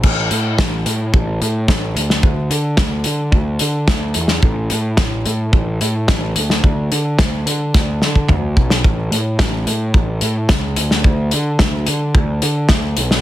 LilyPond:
<<
  \new Staff \with { instrumentName = "Picked electric bass" } { \clef bass \time 4/4 \key a \major \tempo 4 = 109 a,,8 a,8 a,,8 a,8 a,,8 a,8 a,,8 d,8 | d,8 d8 d,8 d8 d,8 d8 d,8 e,8 | a,,8 a,8 a,,8 a,8 a,,8 a,8 a,,8 d,8 | d,8 d8 d,8 d8 d,8 d8 d,8 b,,8 |
a,,8 a,8 a,,8 a,8 a,,8 a,8 cis,8 d,8 | d,8 d8 d,8 d8 d,8 d8 d,8 b,,8 | }
  \new DrumStaff \with { instrumentName = "Drums" } \drummode { \time 4/4 <cymc bd>8 hh8 <bd sn>8 hh8 bd8 hh8 <bd sn>8 hh16 sn16 | bd8 hh8 <bd sn>8 hh8 bd8 hh8 <bd sn>8 hh16 sn16 | bd8 hh8 <bd sn>8 hh8 bd8 hh8 <bd sn>8 hh16 sn16 | bd8 hh8 <bd sn>8 hh8 <bd sn>8 sn16 bd16 <bd toml>8 bd16 sn16 |
bd8 hh8 <bd sn>8 hh8 bd8 hh8 <bd sn>8 hh16 sn16 | bd8 hh8 <bd sn>8 hh8 bd8 hh8 <bd sn>8 hh16 sn16 | }
>>